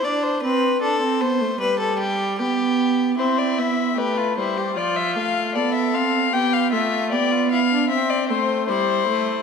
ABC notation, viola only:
X:1
M:4/4
L:1/16
Q:1/4=76
K:C
V:1 name="Viola"
D2 C2 D C B, A, G,4 B,4 | C2 B,2 A,2 G,2 F,2 A,2 B,2 C2 | B,2 A,2 B,4 C2 A,2 G,2 A,2 |]